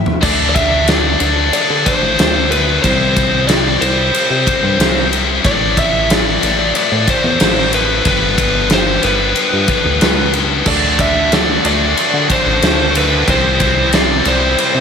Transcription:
Already playing: clean electric guitar A2 E3
0.06 floor tom
0.21 analog synth bass D2, distorted electric guitar D3 F#3 A3 D4, lead electric guitar D5, kick, crash
0.49 lead electric guitar D5
0.54 distorted electric guitar D3 A3 D4, lead electric guitar E5, kick, ride
0.86 distorted electric guitar D3 A3 D4, lead electric guitar D5, snare, ride
1.20 analog synth bass D2, distorted electric guitar D3 F#3 A3 D4, ride
1.52 distorted electric guitar D3 A3 D4, lead electric guitar D5, ride
1.70 analog synth bass D3
1.85 distorted electric guitar D3 A3 D4, lead electric guitar C5, kick, ride
2.02 analog synth bass A1
2.18 analog synth bass D2, distorted electric guitar D3 F#3 A3 D4, snare, ride
2.50 distorted electric guitar D3 A3 D4, lead electric guitar B4, ride
2.83 analog synth bass C2, distorted electric guitar C3 G3 C4 E4, lead electric guitar C5, kick, ride
3.16 distorted electric guitar C3 G3 C4, kick, ride
3.48 distorted electric guitar C3 G3 C4, lead electric guitar D5, snare, ride
3.80 analog synth bass C2, distorted electric guitar C3 G3 C4 E4, lead electric guitar C5, ride
4.14 distorted electric guitar C3 G3 C4, ride
4.30 analog synth bass C3
4.46 distorted electric guitar C3 G3 C4, kick, ride
4.63 analog synth bass G2
4.79 analog synth bass C2, distorted electric guitar C3 G3 C4 E4, snare, ride
5.12 distorted electric guitar C3 G3 C4, ride
5.44 analog synth bass A1, distorted electric guitar A2 E3 A3 C4 E4, lead electric guitar D5, kick, ride
5.77 distorted electric guitar A2 E3 A3, lead electric guitar E5, kick, ride
6.09 distorted electric guitar A2 E3 A3, lead electric guitar D5, snare, ride
6.41 analog synth bass A1, distorted electric guitar A2 E3 A3 C4 E4, ride
6.75 distorted electric guitar A2 E3 A3, lead electric guitar D5, ride
6.92 analog synth bass A2
7.07 distorted electric guitar A2 E3 A3, lead electric guitar C5, kick, ride
7.24 analog synth bass E2
7.40 analog synth bass A1, distorted electric guitar A2 E3 A3 C4 E4, snare, ride
7.72 distorted electric guitar A2 E3 A3, lead electric guitar B4, ride
8.05 analog synth bass G1, distorted electric guitar G2 D3 G3 B3 D4, lead electric guitar B4, kick, ride
8.38 distorted electric guitar G2 D3 G3, kick, ride
8.70 distorted electric guitar G2 D3 G3, snare, ride
8.74 lead electric guitar C5
9.03 analog synth bass G1, distorted electric guitar G2 D3 G3 B3 D4, lead electric guitar B4, ride
9.36 distorted electric guitar G2 D3 G3, ride
9.53 analog synth bass G2
9.68 distorted electric guitar G2 D3 G3, kick, ride
9.85 analog synth bass D2
10.01 analog synth bass C#2, distorted electric guitar G2 D3 G3 B3 D4, snare, ride
10.33 distorted electric guitar G2 D3 G3, ride
10.66 analog synth bass D2, distorted electric guitar D3 F#3 A3 D4 F#4 A4, lead electric guitar D5, kick, crash
10.99 distorted electric guitar D3 A3 D4 F#4 A4, lead electric guitar E5, kick, ride
11.32 distorted electric guitar D3 A3 D4 F#4 A4, lead electric guitar D5, snare, ride
11.64 analog synth bass D2, distorted electric guitar D3 F#3 A3 D4 F#4 A4, lead electric guitar D5, ride
11.97 distorted electric guitar D3 A3 D4 F#4 A4, ride
12.13 analog synth bass D3
12.30 distorted electric guitar D3 A3 D4 F#4 A4, lead electric guitar C5, kick, ride
12.46 analog synth bass A1
12.62 analog synth bass D2, distorted electric guitar D3 F#3 A3 D4 F#4 A4, snare, ride
12.95 distorted electric guitar D3 A3 D4 F#4 A4, lead electric guitar B4, ride
13.27 analog synth bass C2, distorted electric guitar C3 E3 G3 C4 E4, lead electric guitar C5, kick, ride
13.60 distorted electric guitar C3 E3 G3 C4 E4, kick, ride
13.93 distorted electric guitar C3 E3 G3 C4 E4, lead electric guitar D5, snare, ride
14.25 analog synth bass C2, distorted electric guitar C3 E3 G3 C4 E4, lead electric guitar C5, ride
14.58 distorted electric guitar C3 E3 G3 C4 E4, ride
14.74 analog synth bass C3

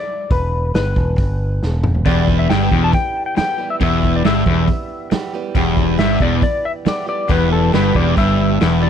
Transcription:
Already playing: electric slide guitar D5
0.31 picked electric bass E1, electric slide guitar B4, kick, open hi-hat
0.74 picked electric bass G1, electric slide guitar B4, snare, open hi-hat
0.96 picked electric bass E1, kick
1.18 picked electric bass G1, kick, open hi-hat
1.63 picked electric bass E1, snare
1.84 mid tom
1.95 floor tom
2.05 picked electric bass E1, steel-string acoustic guitar E2 B2 E3 G3 B3 G4, overdriven electric guitar E2, electric slide guitar D5, kick, open hi-hat
2.26 steel-string acoustic guitar E3 G3 B3 G4, kick
2.39 electric slide guitar E5
2.49 picked electric bass G1, overdriven electric guitar G2, steel-string acoustic guitar E3 G3 B3 G4, electric slide guitar G5, snare, open hi-hat
2.71 picked electric bass E1, overdriven electric guitar E2, steel-string acoustic guitar E3 G3 B3 G4, kick
2.84 electric slide guitar A5
2.93 electric slide guitar G5, kick, open hi-hat
3.26 electric slide guitar G5
3.36 steel-string acoustic guitar E3 G3 B3 G4, electric slide guitar G5, muted overdriven electric guitar stroke, muted picked electric bass stroke, muted distorted electric guitar stroke, snare, open hi-hat
3.58 steel-string acoustic guitar E3 G3 B3 G4
3.70 electric slide guitar E5
3.80 picked electric bass E1, steel-string acoustic guitar E2 B2 E3 G3 B3 G4, overdriven electric guitar E2, electric slide guitar E5, kick, open hi-hat
4.02 steel-string acoustic guitar E3 G3 B3 G4, kick
4.16 electric slide guitar D5
4.24 picked electric bass G1, overdriven electric guitar G2, steel-string acoustic guitar E3 G3 B3 G4, electric slide guitar E5, snare, open hi-hat
4.46 picked electric bass E1, overdriven electric guitar E2, steel-string acoustic guitar E3 G3 B3 G4, kick
4.68 kick, open hi-hat
5.11 steel-string acoustic guitar E3 G3 B3 G4, muted overdriven electric guitar stroke, muted picked electric bass stroke, muted distorted electric guitar stroke, snare, open hi-hat
5.33 steel-string acoustic guitar E3 G3 B3 G4
5.55 picked electric bass E1, steel-string acoustic guitar E2 B2 E3 G3 B3 G4, overdriven electric guitar E2, kick, open hi-hat
5.77 steel-string acoustic guitar E3 G3 B3 G4, kick
5.98 picked electric bass G1, overdriven electric guitar G2, steel-string acoustic guitar E3 G3 B3 G4, electric slide guitar E5, snare, open hi-hat
6.20 picked electric bass E1, overdriven electric guitar E2, steel-string acoustic guitar E3 G3 B3 G4, electric slide guitar D5, kick
6.42 electric slide guitar D5, kick, open hi-hat
6.65 electric slide guitar E5
6.86 steel-string acoustic guitar E3 G3 B3 G4, electric slide guitar D5, muted picked electric bass stroke, muted distorted electric guitar stroke, muted overdriven electric guitar stroke, snare, open hi-hat
7.06 steel-string acoustic guitar E3 G3 B3 G4, electric slide guitar D5
7.28 picked electric bass E1, steel-string acoustic guitar E2 B2 E3 G3 B3 G4, overdriven electric guitar E2, electric slide guitar B4, kick, open hi-hat
7.49 steel-string acoustic guitar E3 G3 B3 G4, electric slide guitar A4
7.72 picked electric bass G1, overdriven electric guitar G2, steel-string acoustic guitar E3 G3 B3 G4, electric slide guitar B4, snare, open hi-hat
7.93 picked electric bass E1, overdriven electric guitar E2, steel-string acoustic guitar E3 G3 B3 G4, electric slide guitar D5, kick
8.17 picked electric bass G1, overdriven electric guitar G2, electric slide guitar E5, kick, open hi-hat
8.60 picked electric bass E1, overdriven electric guitar E2, steel-string acoustic guitar E3 G3 B3 G4, snare, open hi-hat
8.81 steel-string acoustic guitar E3 G3 B3 G4, electric slide guitar D5

